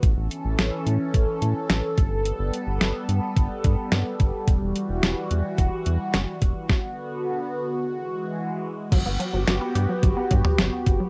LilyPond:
<<
  \new Staff \with { instrumentName = "Analog synth pad" } { \time 4/4 \key g \lydian \tempo 4 = 108 << { a'1~ | a'1 | fis'1 | fis'1 |
g'1 | } \\ { <e cis'>2.~ <e cis'>8 <g b>8~ | <g b>1 | e1 | <d b>2 <e gis>2 |
<b fis'>1 | } >> }
  \new Staff \with { instrumentName = "Synth arpeggio sound" } { \clef bass \time 4/4 \key g \lydian r1 | r1 | r1 | r1 |
fis16 b16 fis16 fis16 fis16 b16 g'16 fis16 fis16 b16 fis16 fis16 fis16 r8 fis16 | }
  \new Staff \with { instrumentName = "Analog synth bass" } { \clef bass \time 4/4 \key g \lydian a,,16 a,,16 r16 a,,16 a,,16 r16 a,16 r16 a,,16 r16 a,16 r16 a,,16 r16 g,,8~ | g,,16 g,,16 r16 g,,16 g,,16 r16 g,16 r16 g,,16 r16 g,16 r16 g,16 r16 g,,16 r16 | e,,16 e,,16 r16 e,,16 e,,16 r16 e,16 r16 e,,16 r16 e,16 r16 fis,,16 r16 e,,16 r16 | r1 |
g,,16 g,,16 r16 g,,16 g,,16 r16 g,16 r16 g,,16 r16 g,16 r16 g,,16 r16 fis,,16 r16 | }
  \new DrumStaff \with { instrumentName = "Drums" } \drummode { \time 4/4 <hh bd>8 hh8 <hh sn>8 hh8 <hh bd>8 hh8 <hh sn>8 <hh bd>8 | hh8 hh8 <hh sn>8 hh8 <hh bd>8 <hh bd>8 <hh sn>8 <hh bd>8 | <hh bd>8 hh8 <hh sn>8 hh8 <hh bd>8 hh8 <hh sn>8 <hh bd>8 | <bd sn>4 r4 r4 r4 |
<cymc hh bd>8 hh8 <hh sn>8 hh8 <hh bd>8 <hh bd>16 toml16 <hh sn>8 <hh bd>8 | }
>>